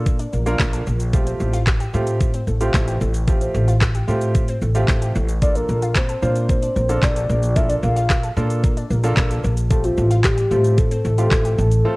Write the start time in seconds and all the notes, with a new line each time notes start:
Already playing: A#2 A#3 D4 F4 A4
0.06 A#3, kick, closed hi-hat, shaker
0.19 D4, closed hi-hat, shaker
0.33 A#1 A#3, shaker
0.46 A#3 D4 F4 A#4, closed hi-hat, shaker
0.60 A#1 A#3, kick, snare, clap, closed hi-hat, shaker
0.73 A4, closed hi-hat, shaker
0.87 A#1 A#3, shaker
1.00 closed hi-hat, shaker
1.13 A3 C4 F4 G4, kick, closed hi-hat, shaker
1.26 C4, closed hi-hat, shaker
1.40 A1 A3, shaker
1.53 F4, closed hi-hat, shaker
1.67 A3, kick, snare, clap, closed hi-hat, shaker
1.80 G4, closed hi-hat, shaker
1.93 A2 A3 C4 F4 G4, shaker
2.07 closed hi-hat, shaker
2.21 A3, kick, closed hi-hat, shaker
2.34 C4, closed hi-hat, shaker
2.47 A1 A3, shaker
2.61 A3 C4 F4 G4, closed hi-hat, shaker
2.74 A1 A3, kick, snare, clap, closed hi-hat, shaker
2.88 G4, closed hi-hat, shaker
3.01 A1 A3, shaker
3.14 closed hi-hat, shaker
3.27 A3 C4 F4 G4, kick, closed hi-hat, shaker
3.41 C4, closed hi-hat, shaker
3.54 A1 A3, shaker
3.68 F4, closed hi-hat, shaker
3.81 A3, kick, snare, clap, closed hi-hat, shaker
3.95 G4, closed hi-hat, shaker
4.08 A2 A3 C4 F4 G4, shaker
4.21 closed hi-hat, shaker
4.35 A3, kick, closed hi-hat, shaker
4.48 C4, closed hi-hat, shaker
4.62 A1 A3, shaker
4.75 A3 C4 F4 G4, closed hi-hat, shaker
4.88 A1 A3, kick, snare, clap, closed hi-hat, shaker
5.02 G4, closed hi-hat, shaker
5.15 A1 A3, shaker
5.29 closed hi-hat, shaker
5.42 A#3 D4 F4 A4 D5, kick, closed hi-hat, shaker
5.55 D4 A#4, closed hi-hat, shaker
5.69 A#1 A#3, shaker
5.82 F4, closed hi-hat, shaker
5.96 A#3 C5, kick, snare, clap, closed hi-hat, shaker
6.09 A4, closed hi-hat, shaker
6.22 A#2 A#3 D4 F4 C5, shaker
6.36 closed hi-hat, shaker
6.49 A#3 C5, kick, closed hi-hat, shaker
6.62 D4, closed hi-hat, shaker
6.75 A#1 A#3, shaker
6.89 A#3 D4 F4 A4, closed hi-hat, shaker
7.03 A#1 A#3 D5, kick, snare, clap, closed hi-hat, shaker
7.16 A4, closed hi-hat, shaker
7.29 A#1 A#3, shaker
7.43 closed hi-hat, shaker
7.56 A#3 D4 F4 A4 E5, kick, closed hi-hat, shaker
7.69 D4 D5, closed hi-hat, shaker
7.83 A#1 A#3 F5, shaker
7.96 F4, closed hi-hat, shaker
8.10 A#3, kick, snare, clap, closed hi-hat, shaker
8.23 A4, closed hi-hat, shaker
8.37 A#2 A#3 D4 F4 A4, shaker
8.50 closed hi-hat, shaker
8.63 A#3, kick, closed hi-hat, shaker
8.77 D4, closed hi-hat, shaker
8.90 A#1 A#3, shaker
9.03 A#3 D4 F4 A4, closed hi-hat, shaker
9.17 A#1 A#3, kick, snare, clap, closed hi-hat, shaker
9.30 A4, closed hi-hat, shaker
9.44 A#1 A#3, shaker
9.57 closed hi-hat, shaker
9.70 A3 C4 F4 G4 A4, kick, closed hi-hat, shaker
9.84 C4 F4, closed hi-hat, shaker
9.97 A1 A3, shaker
10.11 F4, closed hi-hat, shaker
10.24 A3 G4, kick, snare, clap, closed hi-hat, shaker
10.38 G4, closed hi-hat, shaker
10.51 A2 A3 C4 F4 G4, shaker
10.64 closed hi-hat, shaker
10.78 A3 A4, kick, closed hi-hat, shaker
10.91 C4, closed hi-hat, shaker
11.05 A1 A3, shaker
11.18 A3 C4 F4 G4, closed hi-hat, shaker
11.31 A1 A3, kick, snare, clap, closed hi-hat, shaker
11.45 G4, closed hi-hat, shaker
11.58 A1 A3, shaker
11.71 closed hi-hat, shaker
11.85 A3 C4 F4 A4